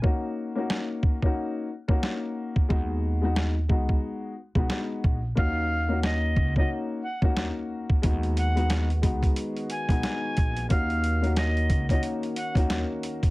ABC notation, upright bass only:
X:1
M:4/4
L:1/16
Q:"Swing 16ths" 1/4=90
K:Ebm
V:1 name="Upright bass" clef=bass
z16 | E,,6 D,,2 z3 C,, z2 B,,,2 | E,,6 D,,2 z3 E,,2 z3 | E,,6 D,,2 z3 C,, z2 B,,,2 |
E,,6 D,,2 z3 E,,2 z3 |]